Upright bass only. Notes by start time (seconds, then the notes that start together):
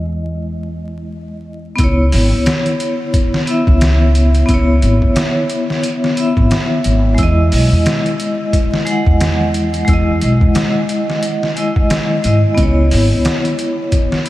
Already playing: E2
1.79 C#2
2.14 G#1
2.33 C#2
3.68 C#2
4.49 C#2
4.83 G#1
5.02 C#2
6.37 G#1
6.85 G#1
7.19 E2
7.53 B1
7.72 E2
9.07 E2
9.88 E2
10.23 B1
10.42 E2
12.25 G#2
12.58 C#2
12.92 G#1
13.12 C#2